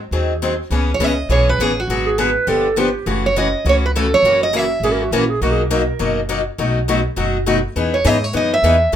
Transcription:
0.11 upright bass D#2, steel-string acoustic guitar D#3 F#3 C4 D#4 G#4
0.42 steel-string acoustic guitar D#3 F#3 C4 D#4 G#4
0.70 upright bass C#2, steel-string acoustic guitar C#3 E3 B3 C#4 G#4
0.94 steel-string acoustic guitar C#5
0.99 upright bass C#2, steel-string acoustic guitar C#3 E3 B3 C#4 G#4
1.04 steel-string acoustic guitar D#5
1.29 upright bass B1, steel-string acoustic guitar C#3 E3 B3 C#4 G#4 C#5
1.49 steel-string acoustic guitar B4
1.58 upright bass A1, steel-string acoustic guitar C#3 E3 B3 C#4 G#4
1.80 steel-string acoustic guitar F#4
1.88 upright bass G#1, steel-string acoustic guitar D3 F#3 B3 F#4 G#4
2.06 clarinet G#4
2.18 steel-string acoustic guitar D3 F#3 B3 F#4 G#4, clarinet B4
2.47 upright bass G1, steel-string acoustic guitar D3 F3 B3 D4 G4, clarinet A4
2.76 steel-string acoustic guitar D3 F3 B3 D4 G4, clarinet G4
3.06 upright bass F#1, steel-string acoustic guitar C#3 E3 A3 C#4 F#4
3.26 steel-string acoustic guitar C#5
3.36 steel-string acoustic guitar C#3 E3 A3 C#4 F#4 D#5
3.65 upright bass C#2, steel-string acoustic guitar C#3 E3 A3 C#4 F#4
3.69 steel-string acoustic guitar C#5
3.86 steel-string acoustic guitar B4
3.96 steel-string acoustic guitar C#3 E3 A3 C#4 F#4 A4
4.14 steel-string acoustic guitar C#5
4.23 upright bass F#1, steel-string acoustic guitar C#3 E3 A#3 C#4 F#4
4.43 steel-string acoustic guitar D#5
4.53 steel-string acoustic guitar C#3 E3 A#3 C#4 F#4 E5
4.80 upright bass G#1, steel-string acoustic guitar C#3 E3 A#3, clarinet G#4
4.84 steel-string acoustic guitar C#4 F#4
4.92 clarinet A#4
5.03 clarinet F#4
5.11 upright bass A#1, steel-string acoustic guitar C#3 E3 A#3 C#4 F#4, clarinet E4
5.29 clarinet G#4
5.41 upright bass B1, steel-string acoustic guitar B2 F#3 A#3 D#4 F#4, clarinet F#4
5.50 clarinet G#4 A#4
5.62 clarinet A#4
5.71 steel-string acoustic guitar B2 F#3 A#3 D#4 F#4
5.99 upright bass F#1, steel-string acoustic guitar B2 F#3 A#3 D#4 F#4
6.29 steel-string acoustic guitar B2 F#3 A#3 D#4 F#4
6.58 upright bass B1, steel-string acoustic guitar B2 F#3 A3 D#4 F#4
6.88 steel-string acoustic guitar B2 F#3 A3 D#4 F#4
7.16 upright bass F#1, steel-string acoustic guitar B2 F#3 A3 D#4 F#4
7.46 steel-string acoustic guitar B2 F#3 A3 D#4 F#4
7.76 upright bass E2, steel-string acoustic guitar E3 B3 D#4 G#4
7.94 steel-string acoustic guitar C#5
8.04 upright bass G#2, steel-string acoustic guitar E3 B3 D#4 G#4 D#5
8.24 steel-string acoustic guitar C#5
8.33 upright bass F#2, steel-string acoustic guitar E3 B3 D#4 G#4 D#5
8.54 steel-string acoustic guitar E5
8.63 upright bass E2, steel-string acoustic guitar E3 B3 D#4 G#4
8.92 steel-string acoustic guitar D#3

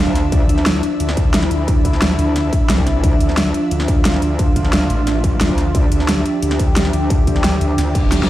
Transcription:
Already playing: analog synth pad F3 D4 F4, ambient pad D4 E5
0.00 wobble bass D2
0.07 kick
0.15 snare, closed hi-hat
0.32 wobble bass D2, analog synth pad E4, kick, closed hi-hat
0.49 wobble bass D2, closed hi-hat
0.58 snare
0.66 snare, closed hi-hat
0.83 closed hi-hat
1.00 wobble bass D2, closed hi-hat
1.09 snare
1.17 kick, closed hi-hat
1.34 snare, closed hi-hat
1.43 snare
1.51 wobble bass D2, closed hi-hat
1.68 kick, closed hi-hat
1.85 kick, closed hi-hat
1.93 snare
2.02 wobble bass D2, snare, closed hi-hat
2.19 wobble bass D2, closed hi-hat
2.36 snare, closed hi-hat
2.53 kick, closed hi-hat
2.69 wobble bass C2, snare, closed hi-hat
2.78 kick
2.87 snare, closed hi-hat
3.04 wobble bass D2, analog synth pad F4, kick, closed hi-hat
3.20 wobble bass D2, closed hi-hat
3.29 snare
3.37 snare, closed hi-hat
3.54 closed hi-hat
3.71 wobble bass D2, closed hi-hat
3.80 snare
3.88 kick, closed hi-hat
4.05 snare, closed hi-hat
4.14 snare
4.22 wobble bass D2, closed hi-hat
4.39 kick, closed hi-hat
4.56 kick, closed hi-hat
4.65 snare
4.73 wobble bass D2, snare, closed hi-hat
4.90 wobble bass A1, closed hi-hat
5.07 snare, closed hi-hat
5.24 kick, closed hi-hat
5.41 wobble bass D2, snare, closed hi-hat
5.49 kick
5.58 snare, closed hi-hat
5.75 wobble bass D2, analog synth pad G4, kick, closed hi-hat
5.92 wobble bass D2, closed hi-hat
6.00 snare
6.09 snare, closed hi-hat
6.26 closed hi-hat
6.42 wobble bass D2, closed hi-hat
6.51 snare
6.59 kick, closed hi-hat
6.76 snare, closed hi-hat
6.85 snare
6.93 wobble bass D2, closed hi-hat
7.10 kick, closed hi-hat
7.27 kick, closed hi-hat
7.36 snare
7.44 wobble bass D2, snare, closed hi-hat
7.61 wobble bass D2, closed hi-hat
7.78 wobble bass D2, snare, closed hi-hat, reverse cymbal
7.95 kick, closed hi-hat
8.12 wobble bass D2, snare, closed hi-hat
8.20 kick, snare

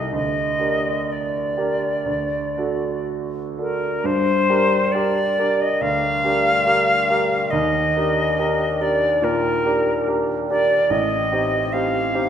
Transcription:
Already playing: grand piano C2 D#4 G4 A4, flute D#5
0.12 grand piano D2, flute D#5
0.59 grand piano D4 G4 A#4
1.12 flute D5
1.57 grand piano D4 G4 A#4
2.06 grand piano D2
2.57 grand piano D4 F#4 A4
3.57 grand piano D4 F#4 A4, flute A#4
4.04 grand piano G2, flute C5
4.49 grand piano D4 G4 A#4
4.92 grand piano D4 G4 A#4, flute D5
5.39 grand piano D4 G4 A#4
5.60 flute D#5
5.81 grand piano D2, flute F5
6.25 grand piano D4 G4 A#4
6.66 grand piano D4 G4 A#4
7.10 grand piano D4 G4 A#4
7.50 grand piano D#2, flute D#5
7.96 grand piano D4 G4 A#4
8.38 grand piano D4 G4 A#4
8.80 grand piano D4 G4 A#4, flute D5
9.22 grand piano A#2, flute A#4
9.65 grand piano D4 G4 A#4
10.08 grand piano D4 G4 A#4
10.49 grand piano D4 G4 A#4, flute D5
10.90 grand piano A1, flute D#5
11.32 grand piano C4 D#4 G4
11.72 grand piano C4 D#4 G4, flute F5
12.14 grand piano C4 D#4 G4

